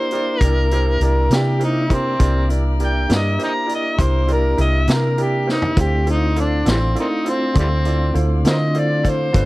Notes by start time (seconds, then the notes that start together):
Already playing: A#3 D4 E4 G4 C5 D5 E5 A#5
0.11 E4 G4 A#4 D5, closed hi-hat
0.40 C2 E4 G4 A#4 D5, kick, closed hi-hat
0.71 E4 G4 A#4 C5, closed hi-hat
1.00 C2 E4 G4 A#4 D5, closed hi-hat
1.30 C3 E4 G4 A#4 D5, snare, closed hi-hat
1.35 G4
1.59 E4 G4 A#4 C5, closed hi-hat
1.64 D#4
1.90 E4 G4 A#4 C5, kick, closed hi-hat
1.94 C4
2.19 C2 A#3 D4 E4 G4 A#4 D5, kick, closed hi-hat
2.49 E4 G4 A#4 D5, closed hi-hat
2.80 E4 G4 A#4 D5, closed hi-hat
2.85 G5
3.09 G2 E4 G4 A#4 D5, snare, closed hi-hat
3.15 D#5
3.38 E4 G4 A#4 C5, closed hi-hat
3.44 D#5 G5 A#5
3.66 E4 G4 A#4 D5, closed hi-hat
3.75 D#5
3.98 C2 E4 G4 A#4 C5, kick, closed hi-hat
4.02 C5
4.28 E4 G4 A#4 D5, closed hi-hat
4.33 A#4
4.57 C2 E4 G4 A#4 D#5 E5, closed hi-hat
4.87 C3 E4 G4 A#4 E5, snare, closed hi-hat
4.93 A#4
5.17 E4 G4 A#4 D5, closed hi-hat
5.23 G4
5.47 E4 G4 A#4 C5, snare
5.51 D#4
5.62 floor tom
5.76 D2 A3 C4 D4 E4 F4 A4 C5 F5 C6, kick, closed hi-hat
5.80 G4
6.06 D#4 E4 F4 A4 C5, closed hi-hat
6.36 D4 E4 F4 A4 C5, closed hi-hat
6.65 A1 E4 F4 A4 D5, snare, closed hi-hat
6.70 E3 G3 C4
6.95 E4 F4 A4 D5, closed hi-hat
7.00 A#3 C4 D#4
7.25 E4 F4 A4 C5, closed hi-hat
7.29 C4
7.53 D2 E4 F4 A4 D5, kick, closed hi-hat
7.59 E3 G3 C4
7.85 E4 F4 A4 D5, closed hi-hat
8.14 D2 E4 F4 A4 C5, closed hi-hat
8.44 D3 E4 F4 A4 C5, snare, closed hi-hat
8.49 A#4 C5 D#5
8.75 E4 F4 A4 C5, closed hi-hat
8.79 D5
9.03 E4 F4 A4 C5, kick, closed hi-hat
9.09 C5
9.33 G1 A3 B3 D4 F4 A4 B4 G5, kick, closed hi-hat